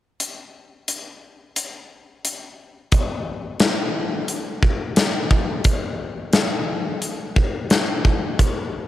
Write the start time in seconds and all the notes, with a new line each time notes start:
0.20 closed hi-hat
0.88 closed hi-hat
1.56 closed hi-hat
2.25 closed hi-hat
2.92 kick, closed hi-hat
3.60 snare, closed hi-hat
4.28 closed hi-hat
4.63 kick
4.96 snare, closed hi-hat
5.31 kick
5.64 kick, closed hi-hat
6.33 snare, closed hi-hat
7.02 closed hi-hat
7.36 kick
7.70 snare, closed hi-hat
8.05 kick
8.39 kick, closed hi-hat